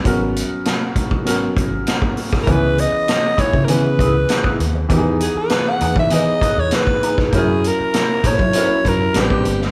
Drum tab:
HH |x-x-x-x-x-x-x-o-|x-x-x-x-x-x-x-x-|x-x-x-x-x-x-x-x-|x-x-x-x-x-x-x-x-|
SD |----o---o---o--o|----o-------o---|----o-------o--o|----o---o---o--o|
BD |o-----oo--o--o-o|o-----oo--o--o--|o------o--o--o-o|o-----oo--o--o--|